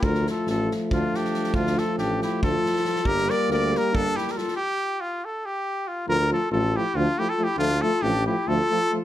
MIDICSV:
0, 0, Header, 1, 7, 480
1, 0, Start_track
1, 0, Key_signature, -1, "minor"
1, 0, Tempo, 431965
1, 34, Time_signature, 7, 3, 24, 8
1, 10049, End_track
2, 0, Start_track
2, 0, Title_t, "Trumpet"
2, 0, Program_c, 0, 56
2, 46, Note_on_c, 0, 70, 89
2, 302, Note_off_c, 0, 70, 0
2, 330, Note_on_c, 0, 69, 67
2, 527, Note_off_c, 0, 69, 0
2, 555, Note_on_c, 0, 69, 74
2, 785, Note_off_c, 0, 69, 0
2, 1033, Note_on_c, 0, 65, 74
2, 1286, Note_on_c, 0, 67, 72
2, 1303, Note_off_c, 0, 65, 0
2, 1720, Note_on_c, 0, 65, 88
2, 1737, Note_off_c, 0, 67, 0
2, 1984, Note_on_c, 0, 69, 79
2, 2000, Note_off_c, 0, 65, 0
2, 2199, Note_off_c, 0, 69, 0
2, 2206, Note_on_c, 0, 67, 81
2, 2447, Note_off_c, 0, 67, 0
2, 2472, Note_on_c, 0, 67, 70
2, 2681, Note_off_c, 0, 67, 0
2, 2708, Note_on_c, 0, 69, 90
2, 3406, Note_on_c, 0, 70, 94
2, 3423, Note_off_c, 0, 69, 0
2, 3664, Note_on_c, 0, 74, 87
2, 3681, Note_off_c, 0, 70, 0
2, 3886, Note_off_c, 0, 74, 0
2, 3920, Note_on_c, 0, 74, 89
2, 4188, Note_on_c, 0, 70, 82
2, 4205, Note_off_c, 0, 74, 0
2, 4389, Note_on_c, 0, 69, 95
2, 4405, Note_off_c, 0, 70, 0
2, 4624, Note_on_c, 0, 67, 80
2, 4641, Note_off_c, 0, 69, 0
2, 4793, Note_on_c, 0, 70, 58
2, 4809, Note_off_c, 0, 67, 0
2, 4859, Note_on_c, 0, 69, 74
2, 4876, Note_off_c, 0, 70, 0
2, 5063, Note_off_c, 0, 69, 0
2, 5070, Note_on_c, 0, 67, 94
2, 5564, Note_on_c, 0, 65, 77
2, 5581, Note_off_c, 0, 67, 0
2, 5835, Note_on_c, 0, 69, 70
2, 5851, Note_off_c, 0, 65, 0
2, 6061, Note_on_c, 0, 67, 87
2, 6078, Note_off_c, 0, 69, 0
2, 6529, Note_on_c, 0, 65, 62
2, 6545, Note_off_c, 0, 67, 0
2, 6751, Note_off_c, 0, 65, 0
2, 6763, Note_on_c, 0, 70, 97
2, 7001, Note_off_c, 0, 70, 0
2, 7036, Note_on_c, 0, 69, 81
2, 7238, Note_off_c, 0, 69, 0
2, 7244, Note_on_c, 0, 69, 83
2, 7513, Note_on_c, 0, 67, 80
2, 7529, Note_off_c, 0, 69, 0
2, 7740, Note_on_c, 0, 65, 89
2, 7756, Note_off_c, 0, 67, 0
2, 7985, Note_on_c, 0, 67, 89
2, 8001, Note_off_c, 0, 65, 0
2, 8102, Note_on_c, 0, 69, 81
2, 8118, Note_off_c, 0, 67, 0
2, 8260, Note_on_c, 0, 67, 83
2, 8277, Note_off_c, 0, 69, 0
2, 8416, Note_off_c, 0, 67, 0
2, 8422, Note_on_c, 0, 65, 96
2, 8685, Note_on_c, 0, 69, 87
2, 8702, Note_off_c, 0, 65, 0
2, 8912, Note_on_c, 0, 67, 96
2, 8929, Note_off_c, 0, 69, 0
2, 9173, Note_off_c, 0, 67, 0
2, 9180, Note_on_c, 0, 67, 82
2, 9420, Note_on_c, 0, 69, 105
2, 9437, Note_off_c, 0, 67, 0
2, 9924, Note_off_c, 0, 69, 0
2, 10049, End_track
3, 0, Start_track
3, 0, Title_t, "Clarinet"
3, 0, Program_c, 1, 71
3, 45, Note_on_c, 1, 65, 67
3, 301, Note_off_c, 1, 65, 0
3, 324, Note_on_c, 1, 65, 60
3, 524, Note_off_c, 1, 65, 0
3, 559, Note_on_c, 1, 65, 53
3, 787, Note_off_c, 1, 65, 0
3, 1026, Note_on_c, 1, 62, 67
3, 1273, Note_off_c, 1, 62, 0
3, 1273, Note_on_c, 1, 62, 74
3, 1708, Note_off_c, 1, 62, 0
3, 1708, Note_on_c, 1, 62, 66
3, 1972, Note_on_c, 1, 65, 66
3, 1988, Note_off_c, 1, 62, 0
3, 2182, Note_off_c, 1, 65, 0
3, 2188, Note_on_c, 1, 62, 71
3, 2438, Note_off_c, 1, 62, 0
3, 2482, Note_on_c, 1, 64, 60
3, 2682, Note_off_c, 1, 64, 0
3, 2689, Note_on_c, 1, 65, 79
3, 3401, Note_on_c, 1, 67, 90
3, 3417, Note_off_c, 1, 65, 0
3, 3670, Note_on_c, 1, 70, 77
3, 3687, Note_off_c, 1, 67, 0
3, 3889, Note_off_c, 1, 70, 0
3, 3898, Note_on_c, 1, 70, 77
3, 4141, Note_on_c, 1, 67, 67
3, 4157, Note_off_c, 1, 70, 0
3, 4358, Note_on_c, 1, 62, 78
3, 4374, Note_off_c, 1, 67, 0
3, 4627, Note_on_c, 1, 64, 70
3, 4643, Note_off_c, 1, 62, 0
3, 4792, Note_on_c, 1, 67, 47
3, 4809, Note_off_c, 1, 64, 0
3, 4847, Note_on_c, 1, 65, 72
3, 4864, Note_off_c, 1, 67, 0
3, 5069, Note_off_c, 1, 65, 0
3, 6746, Note_on_c, 1, 65, 67
3, 6992, Note_off_c, 1, 65, 0
3, 7004, Note_on_c, 1, 65, 67
3, 7221, Note_off_c, 1, 65, 0
3, 7229, Note_on_c, 1, 65, 68
3, 7514, Note_on_c, 1, 64, 61
3, 7531, Note_off_c, 1, 65, 0
3, 7732, Note_on_c, 1, 62, 64
3, 7748, Note_off_c, 1, 64, 0
3, 7988, Note_on_c, 1, 64, 68
3, 8005, Note_off_c, 1, 62, 0
3, 8135, Note_on_c, 1, 65, 61
3, 8151, Note_off_c, 1, 64, 0
3, 8289, Note_on_c, 1, 64, 72
3, 8306, Note_off_c, 1, 65, 0
3, 8431, Note_off_c, 1, 64, 0
3, 8437, Note_on_c, 1, 62, 83
3, 8697, Note_on_c, 1, 65, 73
3, 8714, Note_off_c, 1, 62, 0
3, 8916, Note_on_c, 1, 62, 77
3, 8933, Note_off_c, 1, 65, 0
3, 9171, Note_off_c, 1, 62, 0
3, 9178, Note_on_c, 1, 64, 68
3, 9405, Note_on_c, 1, 65, 80
3, 9422, Note_off_c, 1, 64, 0
3, 10049, Note_off_c, 1, 65, 0
3, 10049, End_track
4, 0, Start_track
4, 0, Title_t, "Euphonium"
4, 0, Program_c, 2, 58
4, 35, Note_on_c, 2, 57, 62
4, 3220, Note_off_c, 2, 57, 0
4, 3409, Note_on_c, 2, 58, 87
4, 5034, Note_off_c, 2, 58, 0
4, 6745, Note_on_c, 2, 57, 60
4, 6851, Note_off_c, 2, 57, 0
4, 7027, Note_on_c, 2, 57, 51
4, 7116, Note_off_c, 2, 57, 0
4, 7242, Note_on_c, 2, 57, 54
4, 7347, Note_off_c, 2, 57, 0
4, 7516, Note_on_c, 2, 57, 48
4, 7605, Note_off_c, 2, 57, 0
4, 7748, Note_on_c, 2, 57, 69
4, 7844, Note_off_c, 2, 57, 0
4, 7975, Note_on_c, 2, 57, 59
4, 8066, Note_off_c, 2, 57, 0
4, 8202, Note_on_c, 2, 57, 58
4, 8293, Note_off_c, 2, 57, 0
4, 8438, Note_on_c, 2, 57, 77
4, 8542, Note_off_c, 2, 57, 0
4, 8695, Note_on_c, 2, 57, 67
4, 8787, Note_off_c, 2, 57, 0
4, 8912, Note_on_c, 2, 57, 58
4, 9020, Note_off_c, 2, 57, 0
4, 9180, Note_on_c, 2, 57, 58
4, 9274, Note_off_c, 2, 57, 0
4, 9409, Note_on_c, 2, 57, 71
4, 9510, Note_off_c, 2, 57, 0
4, 9650, Note_on_c, 2, 57, 59
4, 9744, Note_off_c, 2, 57, 0
4, 9896, Note_on_c, 2, 57, 61
4, 9985, Note_off_c, 2, 57, 0
4, 10049, End_track
5, 0, Start_track
5, 0, Title_t, "Euphonium"
5, 0, Program_c, 3, 58
5, 27, Note_on_c, 3, 53, 52
5, 3339, Note_off_c, 3, 53, 0
5, 3382, Note_on_c, 3, 55, 63
5, 5021, Note_off_c, 3, 55, 0
5, 6747, Note_on_c, 3, 53, 55
5, 6853, Note_off_c, 3, 53, 0
5, 7004, Note_on_c, 3, 53, 54
5, 7097, Note_off_c, 3, 53, 0
5, 7246, Note_on_c, 3, 53, 56
5, 7350, Note_off_c, 3, 53, 0
5, 7514, Note_on_c, 3, 53, 62
5, 7604, Note_off_c, 3, 53, 0
5, 7742, Note_on_c, 3, 53, 71
5, 7840, Note_off_c, 3, 53, 0
5, 7997, Note_on_c, 3, 53, 62
5, 8084, Note_off_c, 3, 53, 0
5, 8205, Note_on_c, 3, 53, 58
5, 8295, Note_off_c, 3, 53, 0
5, 8420, Note_on_c, 3, 53, 66
5, 8528, Note_off_c, 3, 53, 0
5, 8686, Note_on_c, 3, 53, 55
5, 8780, Note_off_c, 3, 53, 0
5, 8933, Note_on_c, 3, 53, 70
5, 9037, Note_off_c, 3, 53, 0
5, 9196, Note_on_c, 3, 53, 67
5, 9286, Note_off_c, 3, 53, 0
5, 9435, Note_on_c, 3, 53, 70
5, 9531, Note_off_c, 3, 53, 0
5, 9687, Note_on_c, 3, 53, 73
5, 9773, Note_off_c, 3, 53, 0
5, 9918, Note_on_c, 3, 53, 60
5, 10003, Note_off_c, 3, 53, 0
5, 10049, End_track
6, 0, Start_track
6, 0, Title_t, "Tuba"
6, 0, Program_c, 4, 58
6, 25, Note_on_c, 4, 38, 86
6, 297, Note_off_c, 4, 38, 0
6, 513, Note_on_c, 4, 33, 82
6, 786, Note_off_c, 4, 33, 0
6, 1005, Note_on_c, 4, 38, 89
6, 1144, Note_off_c, 4, 38, 0
6, 1708, Note_on_c, 4, 38, 76
6, 1978, Note_off_c, 4, 38, 0
6, 2192, Note_on_c, 4, 33, 79
6, 2465, Note_off_c, 4, 33, 0
6, 2695, Note_on_c, 4, 38, 82
6, 2830, Note_off_c, 4, 38, 0
6, 3375, Note_on_c, 4, 31, 80
6, 3649, Note_off_c, 4, 31, 0
6, 3877, Note_on_c, 4, 38, 85
6, 4148, Note_off_c, 4, 38, 0
6, 4368, Note_on_c, 4, 31, 78
6, 4505, Note_off_c, 4, 31, 0
6, 6754, Note_on_c, 4, 38, 80
6, 7023, Note_off_c, 4, 38, 0
6, 7233, Note_on_c, 4, 33, 97
6, 7506, Note_off_c, 4, 33, 0
6, 7721, Note_on_c, 4, 38, 95
6, 7861, Note_off_c, 4, 38, 0
6, 8412, Note_on_c, 4, 38, 79
6, 8689, Note_off_c, 4, 38, 0
6, 8918, Note_on_c, 4, 33, 87
6, 9191, Note_off_c, 4, 33, 0
6, 9409, Note_on_c, 4, 38, 78
6, 9549, Note_off_c, 4, 38, 0
6, 10049, End_track
7, 0, Start_track
7, 0, Title_t, "Drums"
7, 30, Note_on_c, 9, 36, 82
7, 141, Note_off_c, 9, 36, 0
7, 160, Note_on_c, 9, 38, 19
7, 271, Note_off_c, 9, 38, 0
7, 295, Note_on_c, 9, 38, 23
7, 406, Note_off_c, 9, 38, 0
7, 521, Note_on_c, 9, 38, 26
7, 632, Note_off_c, 9, 38, 0
7, 790, Note_on_c, 9, 38, 27
7, 901, Note_off_c, 9, 38, 0
7, 1014, Note_on_c, 9, 36, 72
7, 1125, Note_off_c, 9, 36, 0
7, 1269, Note_on_c, 9, 38, 25
7, 1380, Note_off_c, 9, 38, 0
7, 1386, Note_on_c, 9, 38, 23
7, 1488, Note_off_c, 9, 38, 0
7, 1488, Note_on_c, 9, 38, 23
7, 1597, Note_off_c, 9, 38, 0
7, 1597, Note_on_c, 9, 38, 22
7, 1708, Note_off_c, 9, 38, 0
7, 1709, Note_on_c, 9, 36, 78
7, 1820, Note_off_c, 9, 36, 0
7, 1850, Note_on_c, 9, 38, 22
7, 1961, Note_off_c, 9, 38, 0
7, 1973, Note_on_c, 9, 38, 25
7, 2084, Note_off_c, 9, 38, 0
7, 2199, Note_on_c, 9, 38, 25
7, 2310, Note_off_c, 9, 38, 0
7, 2464, Note_on_c, 9, 38, 24
7, 2576, Note_off_c, 9, 38, 0
7, 2698, Note_on_c, 9, 36, 81
7, 2809, Note_off_c, 9, 36, 0
7, 2955, Note_on_c, 9, 38, 27
7, 3066, Note_off_c, 9, 38, 0
7, 3067, Note_on_c, 9, 38, 24
7, 3165, Note_off_c, 9, 38, 0
7, 3165, Note_on_c, 9, 38, 25
7, 3276, Note_off_c, 9, 38, 0
7, 3285, Note_on_c, 9, 38, 23
7, 3393, Note_on_c, 9, 36, 79
7, 3396, Note_off_c, 9, 38, 0
7, 3504, Note_off_c, 9, 36, 0
7, 3532, Note_on_c, 9, 38, 20
7, 3643, Note_off_c, 9, 38, 0
7, 3663, Note_on_c, 9, 38, 24
7, 3774, Note_off_c, 9, 38, 0
7, 3898, Note_on_c, 9, 38, 25
7, 4009, Note_off_c, 9, 38, 0
7, 4165, Note_on_c, 9, 38, 27
7, 4276, Note_off_c, 9, 38, 0
7, 4385, Note_on_c, 9, 36, 80
7, 4496, Note_off_c, 9, 36, 0
7, 4643, Note_on_c, 9, 38, 26
7, 4749, Note_off_c, 9, 38, 0
7, 4749, Note_on_c, 9, 38, 22
7, 4861, Note_off_c, 9, 38, 0
7, 4866, Note_on_c, 9, 38, 27
7, 4977, Note_off_c, 9, 38, 0
7, 4977, Note_on_c, 9, 38, 25
7, 5088, Note_off_c, 9, 38, 0
7, 10049, End_track
0, 0, End_of_file